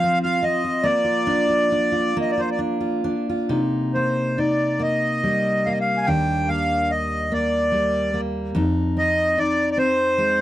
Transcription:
Already playing: steel-string acoustic guitar F3 F4, accordion F5
0.04 steel-string acoustic guitar C4
0.23 steel-string acoustic guitar F4, accordion F5
0.43 steel-string acoustic guitar C4, accordion D#5
0.64 steel-string acoustic guitar F4
0.83 steel-string acoustic guitar A#3, accordion D5
1.04 steel-string acoustic guitar F4
1.27 steel-string acoustic guitar D4
1.49 steel-string acoustic guitar F4
1.72 steel-string acoustic guitar D4
1.92 steel-string acoustic guitar F4
2.17 steel-string acoustic guitar A#3
2.21 accordion D#5
2.31 accordion D5
2.38 steel-string acoustic guitar F4, accordion C5
2.51 accordion D5
2.59 steel-string acoustic guitar D4
2.80 steel-string acoustic guitar F4
3.04 steel-string acoustic guitar D4
3.29 steel-string acoustic guitar F4
3.49 steel-string acoustic guitar C3 D#4
3.94 steel-string acoustic guitar A#3, accordion C5
4.38 steel-string acoustic guitar D#4, accordion D5
4.80 steel-string acoustic guitar A#3, accordion D#5
5.24 steel-string acoustic guitar G3
5.66 steel-string acoustic guitar A#3, accordion F5
5.71 accordion D#5
5.81 accordion F5
5.97 accordion G#5
6.06 steel-string acoustic guitar D#2 D4, accordion G5
6.48 steel-string acoustic guitar A#3, accordion F5
6.91 accordion D#5
7.32 steel-string acoustic guitar A#3, accordion D5
7.72 steel-string acoustic guitar G3
8.14 steel-string acoustic guitar A#3
8.55 steel-string acoustic guitar F2 D#4
8.97 steel-string acoustic guitar C4, accordion D#5
9.38 steel-string acoustic guitar D#4, accordion D5
9.71 accordion D5
9.77 steel-string acoustic guitar C4, accordion C5
10.18 steel-string acoustic guitar G#3

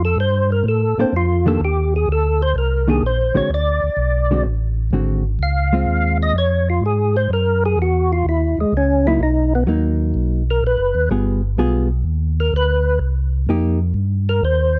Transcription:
Already playing: tonewheel organ F2
0.05 tonewheel organ A4
0.16 tonewheel organ G2 C5
0.52 tonewheel organ A#4
0.64 tonewheel organ A2
0.68 tonewheel organ A4
0.98 tonewheel organ A2 C4, hollow-body jazz guitar A#3 D4 A4 C5
1.12 tonewheel organ F2 F4
1.46 hollow-body jazz guitar D#3 A#3 D4 G4, tonewheel organ A4
1.60 tonewheel organ D#2
1.65 tonewheel organ G4
1.96 tonewheel organ G#4
2.08 tonewheel organ D2
2.12 tonewheel organ A4
2.42 tonewheel organ C5
2.55 tonewheel organ C2 A#4
2.88 hollow-body jazz guitar D#3 A#3 D4 G4, tonewheel organ G#4
3.01 tonewheel organ A#1
3.06 tonewheel organ C5
3.35 tonewheel organ A#1 C#5, hollow-body jazz guitar D3 G#3 C4 F#4
3.49 tonewheel organ D2
3.54 tonewheel organ D5
3.83 tonewheel organ D2
3.97 tonewheel organ B1
4.31 hollow-body jazz guitar D3 G#3 C4 F#4
4.44 tonewheel organ A1
4.91 tonewheel organ G#1, hollow-body jazz guitar D3 G#3 C4 F#4
5.39 tonewheel organ C#2 F5
5.73 hollow-body jazz guitar G#3 C4 F4
5.86 tonewheel organ D#2
6.23 tonewheel organ D#5
6.34 tonewheel organ F2
6.38 tonewheel organ C#5
6.70 tonewheel organ F4
6.81 tonewheel organ G#2
6.86 tonewheel organ G#4
7.17 tonewheel organ C5
7.29 tonewheel organ F#2 A#4
7.66 tonewheel organ G#4
7.76 tonewheel organ E2
7.82 tonewheel organ F#4
8.13 tonewheel organ F4
8.25 tonewheel organ D#2 E4
8.57 tonewheel organ D#2 G#3
8.72 tonewheel organ C#2
8.77 tonewheel organ C#4
9.07 hollow-body jazz guitar F#3 A#3 D#4, tonewheel organ E4
9.19 tonewheel organ B1 D#4
9.55 tonewheel organ B3
9.67 tonewheel organ D#2, hollow-body jazz guitar F#3 A#3 D#4
10.14 tonewheel organ B1
10.50 tonewheel organ A#4
10.61 tonewheel organ A#1
10.67 tonewheel organ B4
10.77 tonewheel organ F#1
10.95 tonewheel organ D#2
11.10 tonewheel organ G1, hollow-body jazz guitar G3 B3 F4 G#4
11.57 tonewheel organ B1, hollow-body jazz guitar G3 B3 F4 G#4
12.04 tonewheel organ D#2
12.40 tonewheel organ A#4
12.52 tonewheel organ D2 B4
12.99 tonewheel organ C2
13.47 tonewheel organ F2, hollow-body jazz guitar A#3 D#4 G4
13.94 tonewheel organ G2
14.29 tonewheel organ A#4
14.42 tonewheel organ D#2 C5

